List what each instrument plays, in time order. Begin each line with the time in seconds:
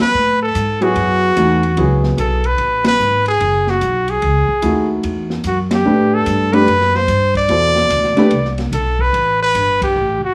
0.01 trumpet B4
0.14 upright bass A2
0.42 trumpet A4
0.55 upright bass G#2, hi-hat pedal, ride
0.81 grand piano F#3 B3 E4 G#4, trumpet F#4, ride
0.96 upright bass F#2, ride
1.37 upright bass E2, grand piano E3 A3 D#4 F#4, hi-hat pedal, ride
1.63 ride
1.77 upright bass C#2, grand piano F#3 B3 E4 G#4, ride
2.03 snare
2.17 upright bass B1, trumpet A4, hi-hat pedal, ride
2.44 trumpet B4, ride
2.58 upright bass A1, ride
2.84 trumpet B4, snare, ride
2.99 upright bass G#1, hi-hat pedal
3.26 trumpet G#4, ride
3.40 upright bass F#1, ride
3.67 trumpet F#4, snare
3.81 upright bass B1, hi-hat pedal, ride
4.08 trumpet G#4, ride
4.22 upright bass C#2, ride
4.48 muted upright bass stroke, kick
4.62 upright bass D#2, grand piano A3 D#4 E4 F#4, hi-hat pedal, ride
5.03 upright bass E2, ride
5.30 snare
5.44 upright bass F#2, trumpet F#4, hi-hat pedal, ride
5.71 trumpet G4, snare, ride
5.85 upright bass A2, grand piano A3 D4 G4 B4
6.14 trumpet A4
6.26 upright bass G2, hi-hat pedal, ride
6.53 grand piano A3 D4 G4 B4, trumpet B4, ride
6.67 upright bass F#2, ride
6.81 snare
6.94 trumpet C5, snare
7.08 upright bass G2, hi-hat pedal, ride
7.35 trumpet D5, kick, ride
7.49 upright bass E2, grand piano B2 E4 A4 C5, ride
7.75 snare
7.90 upright bass D2, hi-hat pedal, ride
8.04 snare
8.16 grand piano A3 D4 G4 B4, muted upright bass stroke, snare, ride
8.31 upright bass C2, ride
8.45 snare
8.58 snare, ride
8.72 upright bass B1, trumpet A4, hi-hat pedal, ride
8.99 trumpet B4, kick
9.13 upright bass A1, ride
9.43 trumpet B4
9.55 upright bass G1, hi-hat pedal, ride
9.81 trumpet G4, kick, ride
9.96 upright bass A1
10.23 trumpet F#4, muted upright bass stroke